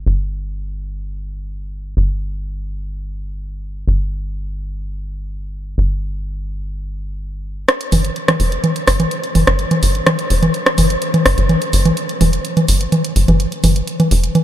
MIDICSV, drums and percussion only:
0, 0, Header, 1, 2, 480
1, 0, Start_track
1, 0, Tempo, 476190
1, 66, Time_signature, 4, 2, 24, 8
1, 14553, End_track
2, 0, Start_track
2, 0, Title_t, "Drums"
2, 7746, Note_on_c, 9, 37, 49
2, 7746, Note_on_c, 9, 42, 58
2, 7847, Note_off_c, 9, 37, 0
2, 7847, Note_off_c, 9, 42, 0
2, 7870, Note_on_c, 9, 42, 56
2, 7971, Note_off_c, 9, 42, 0
2, 7986, Note_on_c, 9, 46, 96
2, 7986, Note_on_c, 9, 64, 91
2, 8087, Note_off_c, 9, 46, 0
2, 8087, Note_off_c, 9, 64, 0
2, 8110, Note_on_c, 9, 42, 53
2, 8210, Note_off_c, 9, 42, 0
2, 8226, Note_on_c, 9, 42, 57
2, 8327, Note_off_c, 9, 42, 0
2, 8350, Note_on_c, 9, 37, 49
2, 8350, Note_on_c, 9, 42, 55
2, 8350, Note_on_c, 9, 64, 90
2, 8450, Note_off_c, 9, 37, 0
2, 8450, Note_off_c, 9, 42, 0
2, 8450, Note_off_c, 9, 64, 0
2, 8466, Note_on_c, 9, 46, 98
2, 8567, Note_off_c, 9, 46, 0
2, 8589, Note_on_c, 9, 42, 59
2, 8690, Note_off_c, 9, 42, 0
2, 8706, Note_on_c, 9, 42, 57
2, 8706, Note_on_c, 9, 64, 88
2, 8807, Note_off_c, 9, 42, 0
2, 8807, Note_off_c, 9, 64, 0
2, 8829, Note_on_c, 9, 42, 56
2, 8930, Note_off_c, 9, 42, 0
2, 8946, Note_on_c, 9, 37, 47
2, 8946, Note_on_c, 9, 46, 102
2, 9047, Note_off_c, 9, 37, 0
2, 9047, Note_off_c, 9, 46, 0
2, 9069, Note_on_c, 9, 42, 58
2, 9069, Note_on_c, 9, 64, 88
2, 9170, Note_off_c, 9, 42, 0
2, 9170, Note_off_c, 9, 64, 0
2, 9186, Note_on_c, 9, 42, 57
2, 9287, Note_off_c, 9, 42, 0
2, 9309, Note_on_c, 9, 42, 56
2, 9410, Note_off_c, 9, 42, 0
2, 9426, Note_on_c, 9, 46, 102
2, 9426, Note_on_c, 9, 64, 89
2, 9527, Note_off_c, 9, 46, 0
2, 9527, Note_off_c, 9, 64, 0
2, 9549, Note_on_c, 9, 37, 48
2, 9549, Note_on_c, 9, 42, 55
2, 9650, Note_off_c, 9, 37, 0
2, 9650, Note_off_c, 9, 42, 0
2, 9666, Note_on_c, 9, 42, 58
2, 9766, Note_off_c, 9, 42, 0
2, 9789, Note_on_c, 9, 42, 59
2, 9789, Note_on_c, 9, 64, 85
2, 9890, Note_off_c, 9, 42, 0
2, 9890, Note_off_c, 9, 64, 0
2, 9905, Note_on_c, 9, 46, 107
2, 10006, Note_off_c, 9, 46, 0
2, 10029, Note_on_c, 9, 42, 60
2, 10130, Note_off_c, 9, 42, 0
2, 10146, Note_on_c, 9, 37, 51
2, 10146, Note_on_c, 9, 42, 58
2, 10146, Note_on_c, 9, 64, 92
2, 10246, Note_off_c, 9, 37, 0
2, 10246, Note_off_c, 9, 42, 0
2, 10246, Note_off_c, 9, 64, 0
2, 10269, Note_on_c, 9, 42, 55
2, 10370, Note_off_c, 9, 42, 0
2, 10386, Note_on_c, 9, 46, 107
2, 10487, Note_off_c, 9, 46, 0
2, 10509, Note_on_c, 9, 42, 61
2, 10509, Note_on_c, 9, 64, 98
2, 10610, Note_off_c, 9, 42, 0
2, 10610, Note_off_c, 9, 64, 0
2, 10626, Note_on_c, 9, 42, 56
2, 10727, Note_off_c, 9, 42, 0
2, 10749, Note_on_c, 9, 37, 49
2, 10749, Note_on_c, 9, 42, 56
2, 10850, Note_off_c, 9, 37, 0
2, 10850, Note_off_c, 9, 42, 0
2, 10866, Note_on_c, 9, 46, 110
2, 10866, Note_on_c, 9, 64, 92
2, 10966, Note_off_c, 9, 46, 0
2, 10966, Note_off_c, 9, 64, 0
2, 10989, Note_on_c, 9, 42, 58
2, 11090, Note_off_c, 9, 42, 0
2, 11106, Note_on_c, 9, 42, 60
2, 11207, Note_off_c, 9, 42, 0
2, 11229, Note_on_c, 9, 42, 61
2, 11229, Note_on_c, 9, 64, 92
2, 11330, Note_off_c, 9, 42, 0
2, 11330, Note_off_c, 9, 64, 0
2, 11346, Note_on_c, 9, 37, 47
2, 11346, Note_on_c, 9, 46, 106
2, 11447, Note_off_c, 9, 37, 0
2, 11447, Note_off_c, 9, 46, 0
2, 11469, Note_on_c, 9, 42, 56
2, 11570, Note_off_c, 9, 42, 0
2, 11586, Note_on_c, 9, 42, 54
2, 11586, Note_on_c, 9, 64, 85
2, 11687, Note_off_c, 9, 42, 0
2, 11687, Note_off_c, 9, 64, 0
2, 11710, Note_on_c, 9, 42, 56
2, 11811, Note_off_c, 9, 42, 0
2, 11826, Note_on_c, 9, 46, 106
2, 11927, Note_off_c, 9, 46, 0
2, 11950, Note_on_c, 9, 42, 59
2, 11950, Note_on_c, 9, 64, 89
2, 12050, Note_off_c, 9, 42, 0
2, 12050, Note_off_c, 9, 64, 0
2, 12066, Note_on_c, 9, 42, 60
2, 12167, Note_off_c, 9, 42, 0
2, 12190, Note_on_c, 9, 42, 58
2, 12290, Note_off_c, 9, 42, 0
2, 12306, Note_on_c, 9, 46, 109
2, 12306, Note_on_c, 9, 64, 90
2, 12407, Note_off_c, 9, 46, 0
2, 12407, Note_off_c, 9, 64, 0
2, 12430, Note_on_c, 9, 42, 63
2, 12530, Note_off_c, 9, 42, 0
2, 12546, Note_on_c, 9, 42, 57
2, 12647, Note_off_c, 9, 42, 0
2, 12670, Note_on_c, 9, 42, 58
2, 12670, Note_on_c, 9, 64, 88
2, 12770, Note_off_c, 9, 42, 0
2, 12770, Note_off_c, 9, 64, 0
2, 12786, Note_on_c, 9, 46, 117
2, 12887, Note_off_c, 9, 46, 0
2, 12910, Note_on_c, 9, 42, 60
2, 13010, Note_off_c, 9, 42, 0
2, 13026, Note_on_c, 9, 42, 59
2, 13026, Note_on_c, 9, 64, 86
2, 13127, Note_off_c, 9, 42, 0
2, 13127, Note_off_c, 9, 64, 0
2, 13149, Note_on_c, 9, 42, 60
2, 13250, Note_off_c, 9, 42, 0
2, 13266, Note_on_c, 9, 46, 110
2, 13366, Note_off_c, 9, 46, 0
2, 13389, Note_on_c, 9, 42, 56
2, 13389, Note_on_c, 9, 64, 87
2, 13490, Note_off_c, 9, 42, 0
2, 13490, Note_off_c, 9, 64, 0
2, 13506, Note_on_c, 9, 42, 59
2, 13607, Note_off_c, 9, 42, 0
2, 13629, Note_on_c, 9, 42, 52
2, 13730, Note_off_c, 9, 42, 0
2, 13746, Note_on_c, 9, 46, 111
2, 13746, Note_on_c, 9, 64, 93
2, 13846, Note_off_c, 9, 46, 0
2, 13846, Note_off_c, 9, 64, 0
2, 13869, Note_on_c, 9, 42, 57
2, 13970, Note_off_c, 9, 42, 0
2, 13986, Note_on_c, 9, 42, 58
2, 14087, Note_off_c, 9, 42, 0
2, 14110, Note_on_c, 9, 42, 57
2, 14110, Note_on_c, 9, 64, 89
2, 14210, Note_off_c, 9, 42, 0
2, 14210, Note_off_c, 9, 64, 0
2, 14226, Note_on_c, 9, 46, 112
2, 14326, Note_off_c, 9, 46, 0
2, 14349, Note_on_c, 9, 42, 61
2, 14450, Note_off_c, 9, 42, 0
2, 14466, Note_on_c, 9, 42, 55
2, 14466, Note_on_c, 9, 64, 90
2, 14553, Note_off_c, 9, 42, 0
2, 14553, Note_off_c, 9, 64, 0
2, 14553, End_track
0, 0, End_of_file